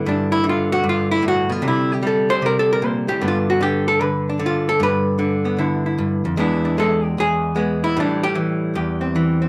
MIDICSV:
0, 0, Header, 1, 2, 480
1, 0, Start_track
1, 0, Tempo, 396092
1, 48, Time_signature, 4, 2, 24, 8
1, 11494, End_track
2, 0, Start_track
2, 0, Title_t, "Hollow-body jazz guitar"
2, 0, Program_c, 0, 26
2, 0, Note_on_c, 0, 50, 60
2, 0, Note_on_c, 0, 64, 46
2, 77, Note_on_c, 0, 43, 71
2, 103, Note_on_c, 0, 62, 67
2, 382, Note_off_c, 0, 64, 0
2, 387, Note_on_c, 0, 64, 79
2, 388, Note_off_c, 0, 62, 0
2, 516, Note_off_c, 0, 50, 0
2, 531, Note_on_c, 0, 50, 60
2, 541, Note_off_c, 0, 64, 0
2, 598, Note_on_c, 0, 65, 77
2, 872, Note_off_c, 0, 65, 0
2, 877, Note_on_c, 0, 66, 96
2, 999, Note_off_c, 0, 43, 0
2, 1013, Note_on_c, 0, 43, 61
2, 1026, Note_off_c, 0, 66, 0
2, 1081, Note_on_c, 0, 65, 75
2, 1346, Note_off_c, 0, 65, 0
2, 1350, Note_on_c, 0, 64, 83
2, 1483, Note_on_c, 0, 45, 60
2, 1503, Note_off_c, 0, 64, 0
2, 1550, Note_on_c, 0, 66, 89
2, 1798, Note_off_c, 0, 45, 0
2, 1812, Note_on_c, 0, 47, 60
2, 1841, Note_off_c, 0, 66, 0
2, 1841, Note_on_c, 0, 65, 81
2, 1951, Note_off_c, 0, 43, 0
2, 1962, Note_on_c, 0, 48, 74
2, 1973, Note_off_c, 0, 47, 0
2, 1973, Note_on_c, 0, 55, 49
2, 1988, Note_off_c, 0, 65, 0
2, 2032, Note_on_c, 0, 64, 67
2, 2313, Note_off_c, 0, 64, 0
2, 2326, Note_on_c, 0, 67, 78
2, 2450, Note_off_c, 0, 55, 0
2, 2455, Note_on_c, 0, 55, 60
2, 2471, Note_off_c, 0, 67, 0
2, 2506, Note_on_c, 0, 69, 75
2, 2787, Note_on_c, 0, 72, 98
2, 2790, Note_off_c, 0, 69, 0
2, 2920, Note_off_c, 0, 48, 0
2, 2934, Note_on_c, 0, 48, 61
2, 2941, Note_off_c, 0, 72, 0
2, 2980, Note_on_c, 0, 70, 73
2, 3114, Note_off_c, 0, 70, 0
2, 3142, Note_on_c, 0, 69, 77
2, 3275, Note_off_c, 0, 69, 0
2, 3304, Note_on_c, 0, 70, 77
2, 3418, Note_on_c, 0, 46, 62
2, 3469, Note_off_c, 0, 70, 0
2, 3469, Note_on_c, 0, 72, 91
2, 3726, Note_off_c, 0, 46, 0
2, 3735, Note_on_c, 0, 45, 57
2, 3741, Note_on_c, 0, 67, 86
2, 3752, Note_off_c, 0, 72, 0
2, 3871, Note_off_c, 0, 48, 0
2, 3886, Note_off_c, 0, 50, 0
2, 3895, Note_off_c, 0, 45, 0
2, 3895, Note_on_c, 0, 43, 68
2, 3898, Note_off_c, 0, 67, 0
2, 3901, Note_on_c, 0, 50, 48
2, 3904, Note_off_c, 0, 55, 0
2, 3909, Note_on_c, 0, 59, 50
2, 3972, Note_on_c, 0, 65, 74
2, 4234, Note_off_c, 0, 65, 0
2, 4239, Note_on_c, 0, 66, 80
2, 4355, Note_off_c, 0, 50, 0
2, 4370, Note_on_c, 0, 50, 65
2, 4387, Note_off_c, 0, 66, 0
2, 4394, Note_on_c, 0, 67, 78
2, 4694, Note_off_c, 0, 67, 0
2, 4700, Note_on_c, 0, 69, 81
2, 4840, Note_off_c, 0, 50, 0
2, 4855, Note_on_c, 0, 50, 64
2, 4868, Note_off_c, 0, 69, 0
2, 4868, Note_on_c, 0, 71, 93
2, 5171, Note_off_c, 0, 71, 0
2, 5204, Note_on_c, 0, 62, 49
2, 5311, Note_off_c, 0, 50, 0
2, 5326, Note_on_c, 0, 50, 66
2, 5350, Note_off_c, 0, 62, 0
2, 5404, Note_on_c, 0, 65, 79
2, 5679, Note_off_c, 0, 65, 0
2, 5681, Note_on_c, 0, 69, 84
2, 5792, Note_off_c, 0, 43, 0
2, 5814, Note_on_c, 0, 43, 72
2, 5828, Note_off_c, 0, 69, 0
2, 5853, Note_on_c, 0, 71, 83
2, 6271, Note_off_c, 0, 50, 0
2, 6285, Note_on_c, 0, 50, 60
2, 6602, Note_off_c, 0, 59, 0
2, 6607, Note_on_c, 0, 59, 44
2, 6754, Note_off_c, 0, 50, 0
2, 6768, Note_on_c, 0, 50, 62
2, 6775, Note_on_c, 0, 64, 49
2, 7097, Note_off_c, 0, 64, 0
2, 7102, Note_on_c, 0, 64, 46
2, 7237, Note_off_c, 0, 43, 0
2, 7251, Note_on_c, 0, 43, 63
2, 7271, Note_off_c, 0, 71, 0
2, 7562, Note_off_c, 0, 43, 0
2, 7573, Note_on_c, 0, 41, 61
2, 7708, Note_off_c, 0, 50, 0
2, 7711, Note_off_c, 0, 59, 0
2, 7718, Note_off_c, 0, 41, 0
2, 7723, Note_on_c, 0, 40, 71
2, 7729, Note_on_c, 0, 56, 49
2, 7741, Note_on_c, 0, 59, 49
2, 7742, Note_off_c, 0, 64, 0
2, 7747, Note_on_c, 0, 62, 52
2, 7758, Note_on_c, 0, 64, 51
2, 8043, Note_off_c, 0, 62, 0
2, 8057, Note_on_c, 0, 62, 47
2, 8202, Note_off_c, 0, 56, 0
2, 8216, Note_on_c, 0, 56, 64
2, 8231, Note_off_c, 0, 64, 0
2, 8236, Note_on_c, 0, 69, 80
2, 8528, Note_off_c, 0, 69, 0
2, 8528, Note_on_c, 0, 67, 80
2, 8685, Note_off_c, 0, 40, 0
2, 8692, Note_off_c, 0, 67, 0
2, 8704, Note_on_c, 0, 40, 61
2, 8726, Note_on_c, 0, 68, 89
2, 9143, Note_off_c, 0, 56, 0
2, 9154, Note_off_c, 0, 59, 0
2, 9157, Note_on_c, 0, 56, 65
2, 9169, Note_on_c, 0, 59, 46
2, 9494, Note_off_c, 0, 68, 0
2, 9499, Note_on_c, 0, 64, 82
2, 9622, Note_off_c, 0, 56, 0
2, 9628, Note_off_c, 0, 59, 0
2, 9636, Note_off_c, 0, 62, 0
2, 9653, Note_on_c, 0, 45, 78
2, 9656, Note_off_c, 0, 40, 0
2, 9657, Note_off_c, 0, 64, 0
2, 9665, Note_on_c, 0, 52, 45
2, 9665, Note_on_c, 0, 55, 48
2, 9695, Note_on_c, 0, 62, 75
2, 9979, Note_on_c, 0, 67, 94
2, 9984, Note_off_c, 0, 62, 0
2, 10119, Note_off_c, 0, 52, 0
2, 10124, Note_on_c, 0, 52, 61
2, 10137, Note_off_c, 0, 67, 0
2, 10608, Note_on_c, 0, 40, 68
2, 10612, Note_off_c, 0, 45, 0
2, 10617, Note_on_c, 0, 67, 44
2, 10918, Note_on_c, 0, 60, 47
2, 11090, Note_off_c, 0, 52, 0
2, 11095, Note_on_c, 0, 52, 64
2, 11399, Note_off_c, 0, 60, 0
2, 11413, Note_on_c, 0, 60, 44
2, 11494, Note_off_c, 0, 40, 0
2, 11494, Note_off_c, 0, 52, 0
2, 11494, Note_off_c, 0, 55, 0
2, 11494, Note_off_c, 0, 60, 0
2, 11494, Note_off_c, 0, 67, 0
2, 11494, End_track
0, 0, End_of_file